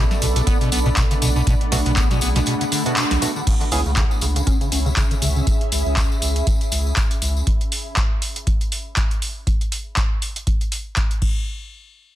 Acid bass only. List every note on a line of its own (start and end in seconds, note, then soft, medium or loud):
0.22 0.27 B2 medium
0.36 0.42 B2 medium
0.47 0.58 B3 loud
0.61 0.70 B2 medium
0.72 0.80 B3 medium
0.86 0.90 B2 loud
0.97 1.05 B2 medium
1.11 1.15 C#3 medium
1.22 1.30 B2 medium
1.36 1.42 B2 medium
1.47 1.55 B2 loud
1.72 1.77 B2 medium
1.86 1.92 B2 medium
1.97 2.09 B3 loud
2.11 2.20 B2 medium
2.22 2.30 B3 medium
2.36 2.40 B2 loud
2.47 2.55 B2 medium
2.61 2.65 C#3 medium
2.72 2.84 D3 medium
2.86 2.95 B2 medium
2.97 3.05 B2 medium
3.11 3.17 B1 loud
3.22 3.27 B2 loud
3.36 3.42 D3 medium
3.47 3.55 C#3 medium
3.61 3.65 D3 medium
3.72 3.80 C#3 medium
3.86 3.92 C#3 medium
3.97 4.05 C#3 loud
4.22 4.27 C#3 medium
4.36 4.42 C#3 medium
4.47 4.59 C#4 loud
4.61 4.70 C#3 medium
4.72 4.80 C#4 medium
4.86 4.90 C#3 loud
4.97 5.05 C#3 medium
5.11 5.15 D3 medium
5.22 5.30 C#3 medium
5.36 5.42 C#3 medium